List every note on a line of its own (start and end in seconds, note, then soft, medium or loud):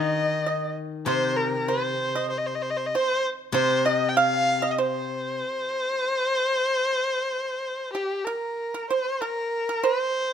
0.00 1.68 D#3 medium
0.00 0.42 D#5 medium
0.00 0.73 D#5 medium
0.46 0.75 D#5 medium
1.06 2.92 C3 medium
1.06 1.38 C5 loud
1.06 1.44 C5 medium
1.37 1.69 A#4 medium
1.44 1.65 A#4 medium
1.68 2.29 C5 medium
1.68 2.12 C5 medium
2.15 2.30 D#5 medium
2.30 2.40 C5 medium
2.38 2.48 D#5 medium
2.46 2.57 C5 medium
2.55 2.64 D#5 medium
2.62 2.72 C5 medium
2.70 2.78 D#5 medium
2.77 2.88 C5 medium
2.86 2.97 D#5 medium
2.95 3.22 C5 medium
2.95 3.24 C5 medium
3.52 5.40 C3 medium
3.52 3.83 C5 medium
3.52 3.87 C5 medium
3.85 4.10 D#5 medium
3.85 4.14 D#5 medium
4.09 4.18 G5 medium
4.17 4.72 F5 loud
4.17 4.60 F5 medium
4.62 4.77 D#5 medium
4.71 4.81 D#5 soft
4.78 7.90 C5 medium
4.78 7.93 C5 medium
7.94 8.27 G4 medium
7.94 8.25 G4 medium
8.25 8.89 A#4 medium
8.25 8.71 A#4 medium
8.74 8.89 A#4 medium
8.90 9.22 C5 medium
8.90 9.20 C5 medium
9.21 9.86 A#4 medium
9.21 9.66 A#4 medium
9.69 9.83 A#4 medium
9.83 10.33 C5 medium